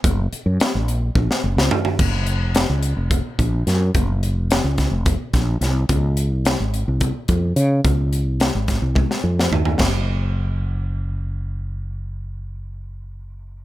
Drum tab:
CC |--------------|x-------------|--------------|--------------|
HH |x-x-x-x-------|--x-x-x-x-x-x-|x-x-x-x-x-x-x-|x-x-x-x-x-x-x-|
SD |----o----o-o--|----o-------o-|----o-o---o-o-|----o---------|
T1 |--------------|--------------|--------------|--------------|
FT |------------oo|--------------|--------------|--------------|
BD |o-------o-----|o-------o-o---|o-----o-o-o---|o-------o-o---|

CC |--------------|x-------------|--------------|
HH |x-x-x-x-------|--------------|--------------|
SD |----o-o--o-o--|o-------------|--------------|
T1 |--------o-----|--------------|--------------|
FT |------------oo|--------------|--------------|
BD |o-----o-o-----|o-------------|--------------|